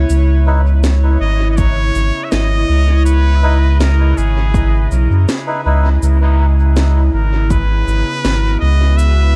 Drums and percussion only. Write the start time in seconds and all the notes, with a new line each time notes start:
0.10 cabasa
0.84 snare, cabasa
1.58 kick, cabasa
1.95 cabasa
2.32 snare, cabasa
3.06 cabasa
3.81 snare, cabasa
4.18 cabasa
4.54 kick, cabasa
4.91 cabasa
5.29 snare, cabasa
6.03 cabasa
6.77 snare, cabasa
7.50 kick, cabasa
7.88 cabasa
8.25 snare, cabasa
8.99 cabasa